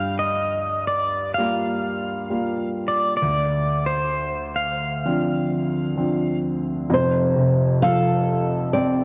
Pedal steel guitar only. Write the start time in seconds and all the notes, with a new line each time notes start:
Already playing: F5
0.19 D#5
0.87 D5
1.34 F5
2.88 D5
3.17 D5
3.86 C5
4.56 F5